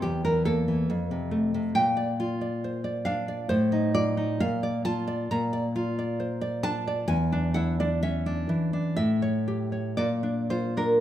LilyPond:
\new Staff \with { instrumentName = "Nylon-string guitar" } { \time 2/4 \key bes \lydian \tempo 4 = 67 << { g'16 bes'16 a'4 r8 | g''4. f''8 | c''8 d''8 f''8 a''8 | bes''4. a''8 |
gis''8 fis''16 d''16 e''8 r8 | e''4 d''8 c''16 bes'16 | } \\ { e,16 e16 bes16 e16 f,16 c16 a16 c16 | bes,16 d''16 f'16 d''16 c''16 d''16 d'16 d''16 | a,16 ees'16 f'16 ees'16 bes,16 d''16 f'16 d''16 | bes,16 d''16 f'16 d''16 c''16 d''16 d'16 d''16 |
e,16 d'16 e'16 d'16 cis'16 d'16 e16 d'16 | a,16 cis''16 g'16 cis''16 bes,16 d'16 f'16 d'16 | } >> }